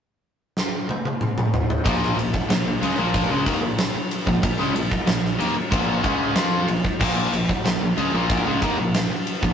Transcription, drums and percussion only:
0.57 snare medium
0.89 high tom medium
1.05 high tom medium
1.21 mid tom medium
1.38 mid tom loud
1.54 floor tom loud
1.70 floor tom loud
1.86 kick loud
1.86 ride loud
2.03 snare soft
2.19 ride medium
2.34 kick medium
2.50 snare loud
2.50 ride loud
2.83 ride medium
3.14 kick loud
3.14 ride loud
3.46 kick medium
3.46 ride medium
3.78 snare loud
3.78 ride loud
4.11 ride medium
4.27 kick medium
4.43 kick loud
4.43 ride loud
4.60 snare soft
4.76 ride medium
4.92 kick medium
5.07 snare loud
5.07 ride medium
5.25 snare soft
5.40 ride medium
5.72 kick loud
5.72 ride medium
6.04 kick medium
6.04 ride medium
6.35 snare loud
6.35 ride medium
6.68 ride medium
6.85 kick medium
7.01 kick loud
7.01 crash loud
7.33 ride medium
7.49 kick medium
7.65 snare loud
7.65 ride loud
7.98 ride medium
8.30 kick loud
8.30 ride loud
8.62 kick medium
8.62 ride medium
8.94 snare loud
8.94 ride loud
9.27 ride medium
9.43 kick medium

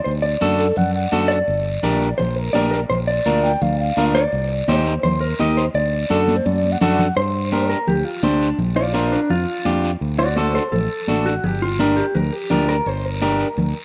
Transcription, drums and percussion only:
0.05 high conga soft
0.05 long guiro medium
0.41 high conga medium
0.41 short guiro medium
0.59 short guiro medium
0.76 high conga soft
0.76 low conga medium
0.76 long guiro medium
1.12 high conga medium
1.12 short guiro medium
1.30 short guiro medium
1.48 high conga soft
1.48 long guiro medium
1.84 high conga medium
1.84 short guiro medium
2.02 short guiro medium
2.19 high conga soft
2.19 low conga medium
2.19 long guiro medium
2.55 high conga medium
2.55 short guiro medium
2.73 short guiro medium
2.90 high conga soft
2.90 low conga medium
2.90 long guiro medium
3.26 high conga medium
3.26 short guiro medium
3.44 short guiro medium
3.61 high conga soft
3.61 low conga medium
3.61 long guiro medium
3.97 high conga medium
3.97 short guiro medium
4.15 short guiro medium
4.32 high conga soft
4.32 long guiro medium
4.68 high conga medium
4.68 short guiro medium
4.86 short guiro medium
5.04 high conga soft
5.04 low conga medium
5.04 long guiro medium
5.39 high conga loud
5.39 short guiro medium
5.57 short guiro medium
5.74 high conga soft
5.74 long guiro medium
6.10 high conga medium
6.10 short guiro medium
6.28 high conga medium
6.28 short guiro medium
6.46 high conga loud
6.46 long guiro medium
6.64 high conga medium
6.81 low conga medium
6.81 short guiro medium
6.99 low conga medium
6.99 short guiro medium
7.17 long guiro medium
7.52 high conga medium
7.52 short guiro medium
7.70 short guiro medium
7.87 high conga soft
7.87 low conga medium
7.87 long guiro medium
8.23 high conga loud
8.23 short guiro medium
8.41 short guiro medium
8.59 high conga soft
8.59 low conga medium
8.59 long guiro medium
8.94 high conga medium
8.94 short guiro medium
9.12 short guiro medium
9.30 high conga soft
9.30 low conga medium
9.30 long guiro medium
9.65 high conga medium
9.65 short guiro medium
9.84 short guiro medium
10.01 high conga soft
10.01 long guiro medium
10.37 high conga medium
10.37 short guiro medium
10.55 short guiro medium
10.72 high conga soft
10.72 low conga medium
10.72 long guiro medium
11.08 high conga medium
11.08 short guiro medium
11.26 short guiro medium
11.44 high conga soft
11.44 low conga medium
11.44 long guiro medium
11.79 high conga medium
11.79 short guiro medium
11.97 short guiro medium
12.15 high conga soft
12.15 low conga medium
12.15 long guiro medium
12.51 high conga medium
12.51 low conga medium
12.51 short guiro medium
12.69 short guiro medium
12.86 high conga soft
12.86 long guiro medium
13.21 high conga medium
13.21 short guiro medium
13.39 short guiro medium
13.57 high conga soft
13.57 low conga medium
13.57 long guiro medium

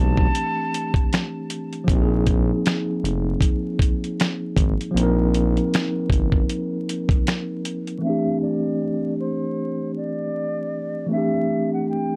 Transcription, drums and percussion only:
0.17 kick medium
0.35 closed hi-hat medium
0.74 closed hi-hat medium
0.94 kick loud
0.94 closed hi-hat soft
1.13 finger snap medium
1.13 snare loud
1.13 closed hi-hat medium
1.50 closed hi-hat medium
1.73 closed hi-hat soft
1.88 kick loud
1.88 closed hi-hat medium
2.27 kick medium
2.27 closed hi-hat medium
2.66 finger snap loud
2.66 snare loud
2.66 closed hi-hat medium
3.05 closed hi-hat medium
3.41 kick medium
3.41 closed hi-hat medium
3.79 kick medium
3.79 closed hi-hat medium
4.04 closed hi-hat soft
4.20 finger snap medium
4.20 snare loud
4.20 closed hi-hat medium
4.57 kick medium
4.57 closed hi-hat medium
4.81 closed hi-hat soft
4.97 closed hi-hat medium
5.34 closed hi-hat medium
5.57 closed hi-hat soft
5.74 finger snap loud
5.74 snare loud
5.74 closed hi-hat medium
6.10 kick loud
6.10 closed hi-hat medium
6.32 kick medium
6.49 closed hi-hat medium
6.89 closed hi-hat medium
7.09 kick loud
7.09 closed hi-hat soft
7.27 finger snap medium
7.27 snare medium
7.27 closed hi-hat medium
7.65 closed hi-hat medium
7.87 closed hi-hat soft

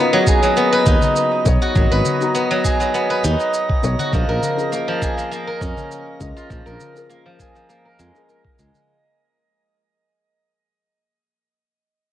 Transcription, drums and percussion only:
0.27 kick medium
0.27 shaker medium
0.43 shaker soft
0.57 shaker soft
0.86 kick loud
0.86 darbuka ka medium
0.86 shaker medium
1.02 darbuka dum medium
1.02 shaker soft
1.16 shaker soft
1.32 darbuka ka soft
1.46 kick loud
1.46 shaker medium
1.62 shaker soft
1.75 kick loud
1.75 darbuka tek medium
1.75 shaker soft
1.91 darbuka ka medium
2.04 darbuka tek soft
2.04 darbuka dum loud
2.04 shaker medium
2.21 shaker soft
2.35 shaker soft
2.65 kick medium
2.65 darbuka ka soft
2.65 shaker medium
2.81 shaker soft
2.95 shaker soft
3.24 shaker medium
3.40 shaker soft
3.54 shaker soft
3.70 kick loud
3.83 darbuka tek soft
3.83 shaker medium
3.99 darbuka dum medium
3.99 shaker soft
4.13 kick loud
4.13 darbuka tek medium
4.13 shaker soft
4.29 darbuka ka soft
4.42 darbuka dum loud
4.42 shaker medium
4.59 shaker soft
4.73 shaker soft
5.02 kick medium
5.02 shaker medium
5.18 shaker soft
5.32 shaker soft
5.60 kick loud
5.60 darbuka ka medium
5.60 shaker medium
5.77 darbuka dum medium
5.77 shaker soft
5.92 shaker soft
6.07 darbuka ka soft
6.21 kick loud
6.21 shaker medium
6.37 shaker soft
6.50 kick loud
6.50 darbuka tek medium
6.50 shaker soft
6.67 darbuka ka soft
6.67 shaker soft
6.80 darbuka tek soft
6.80 darbuka dum medium
6.80 shaker medium
6.96 shaker soft
7.10 shaker soft
7.40 kick medium
7.40 darbuka ka soft
7.40 shaker medium
7.56 shaker soft
7.70 shaker soft
7.99 darbuka tek medium
7.99 shaker medium
8.15 shaker soft
8.29 shaker soft
8.45 kick loud
8.58 darbuka tek soft
8.58 shaker medium
8.74 darbuka dum medium
8.74 shaker soft

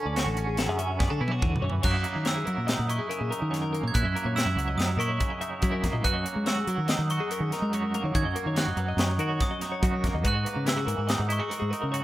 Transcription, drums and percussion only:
0.16 snare medium
0.16 closed hi-hat medium
0.37 closed hi-hat medium
0.57 snare loud
0.57 closed hi-hat medium
0.79 closed hi-hat medium
1.00 kick loud
1.00 snare soft
1.28 high tom medium
1.42 kick medium
1.42 mid tom medium
1.56 mid tom medium
1.70 floor tom medium
1.83 kick medium
1.83 crash medium
2.04 closed hi-hat soft
2.25 snare medium
2.25 closed hi-hat medium
2.47 closed hi-hat soft
2.68 snare medium
2.68 closed hi-hat medium
2.90 closed hi-hat medium
3.11 closed hi-hat medium
3.32 closed hi-hat medium
3.54 snare soft
3.54 closed hi-hat medium
3.74 closed hi-hat soft
3.95 kick medium
3.95 closed hi-hat medium
4.16 closed hi-hat medium
4.37 snare medium
4.37 closed hi-hat medium
4.59 closed hi-hat soft
4.79 snare medium
4.79 closed hi-hat medium
5.01 closed hi-hat soft
5.20 kick medium
5.20 closed hi-hat medium
5.41 closed hi-hat medium
5.62 kick medium
5.62 closed hi-hat medium
5.84 kick medium
5.84 snare soft
5.84 closed hi-hat medium
6.04 kick medium
6.04 closed hi-hat medium
6.26 closed hi-hat medium
6.46 snare medium
6.46 closed hi-hat medium
6.67 closed hi-hat medium
6.88 snare loud
6.88 closed hi-hat medium
7.10 closed hi-hat medium
7.31 closed hi-hat medium
7.52 snare soft
7.52 closed hi-hat medium
7.73 closed hi-hat medium
7.94 closed hi-hat medium
8.15 kick medium
8.15 closed hi-hat medium
8.36 closed hi-hat medium
8.56 snare medium
8.56 closed hi-hat medium
8.77 closed hi-hat soft
8.98 snare loud
8.98 closed hi-hat medium
9.19 closed hi-hat soft
9.40 kick medium
9.40 snare soft
9.40 closed hi-hat medium
9.61 snare soft
9.61 closed hi-hat medium
9.83 kick loud
9.83 closed hi-hat medium
10.04 kick medium
10.04 snare soft
10.04 closed hi-hat soft
10.25 kick medium
10.25 closed hi-hat medium
10.46 closed hi-hat medium
10.67 snare loud
10.67 closed hi-hat medium
10.88 closed hi-hat medium
11.09 snare medium
11.09 closed hi-hat medium
11.30 closed hi-hat medium
11.51 closed hi-hat medium
11.73 closed hi-hat medium
11.94 closed hi-hat medium

